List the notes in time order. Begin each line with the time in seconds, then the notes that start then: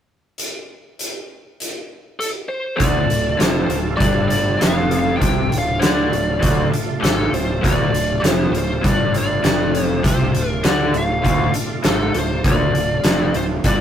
0.38 closed hi-hat
0.99 closed hi-hat
1.60 closed hi-hat
2.20 A4, closed hi-hat
2.49 C5
2.77 D1 D2 A3 D4 F4 A4 D5, kick, closed hi-hat
3.08 D1 D2, closed hi-hat
3.38 F1 F2, snare, closed hi-hat
3.45 C5
3.67 D1 D2 C5, closed hi-hat
3.97 G1 G2 D5, kick, closed hi-hat
4.28 D5, closed hi-hat
4.57 F2 F5, closed hi-hat
4.62 F1, snare
4.91 closed hi-hat
4.99 F5
5.17 C3 A3 D4 F4 G5
5.21 C2, kick, closed hi-hat
5.50 D1 D2, closed hi-hat
5.59 F5
5.80 D2 D3 D5, snare, closed hi-hat
6.10 D1 D2, closed hi-hat
6.39 D1 D2, kick, closed hi-hat
6.72 muted fingered electric bass stroke, muted overdriven electric guitar stroke, closed hi-hat
7.01 G#1 G#2 A4, snare, closed hi-hat
7.32 D1 D2 C5, closed hi-hat
7.62 D1 D2 A#3 D#4 F#4 D5, kick, closed hi-hat
7.83 A3 D4 F4
7.92 D1 D2, closed hi-hat
8.23 F1 F2, snare, closed hi-hat
8.31 C5
8.51 D1 D2, closed hi-hat
8.58 C5
8.82 G1 G2, kick, closed hi-hat
8.89 D5
9.14 D5, closed hi-hat
9.43 F1 F2, snare, closed hi-hat
9.75 closed hi-hat
9.83 C5
10.03 C2 C3 A3 D4 F4, kick, closed hi-hat
10.07 C5
10.33 D1 D2, closed hi-hat
10.49 A#4
10.64 D2 D3, snare, closed hi-hat
10.68 D5
10.94 D1 D2 F5, closed hi-hat
11.23 D1 D2, kick, closed hi-hat
11.54 muted overdriven electric guitar stroke, muted fingered electric bass stroke, closed hi-hat
11.84 G#1 G#2, snare, closed hi-hat
11.88 A4
12.14 D1 D2, closed hi-hat
12.19 C5
12.43 D1 D2 A#3 D#4 F#4 D5, kick, closed hi-hat
12.62 A3 D4 F4
12.74 D1 D2, closed hi-hat
13.04 F1 F2, snare, closed hi-hat
13.34 D1 D2 C5, closed hi-hat
13.64 G1 G2 D5, kick, closed hi-hat